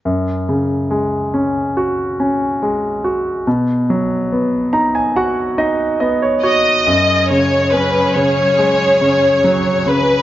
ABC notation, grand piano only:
X:1
M:4/4
L:1/16
Q:1/4=70
K:Blyd
V:1 name="Grand piano"
z16 | z6 a g f2 d2 d c c2 | z16 |]
V:2 name="Grand piano" clef=bass
F,,2 C,2 G,2 C2 F2 C2 G,2 F2 | B,,2 F,2 B,2 D2 F2 D2 B,2 F2 | F,,2 C,2 C2 C,2 G,2 C,2 F,2 C,2 |]